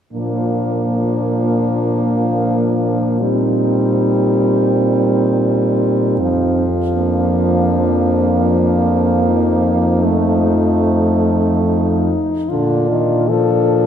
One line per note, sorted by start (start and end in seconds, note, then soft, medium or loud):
0.13 6.21 A#2 soft
0.13 3.23 F3 soft
0.13 3.17 A#3 soft
0.13 3.17 D4 soft
3.21 6.19 G3 soft
3.21 6.65 C4 soft
3.21 6.64 D#4 soft
6.20 12.17 F2 soft
6.20 12.13 F3 soft
6.94 10.04 A#3 soft
6.94 9.21 D4 soft
9.25 11.61 D#4 soft
10.03 12.17 A3 soft
11.65 12.51 D#4 soft
12.50 13.87 A#2 soft
12.50 12.88 D3 soft
12.50 13.27 D4 soft
12.50 13.30 F4 soft
12.90 13.31 D#3 soft
13.29 13.87 F3 soft
13.29 13.87 D4 soft
13.29 13.87 A4 soft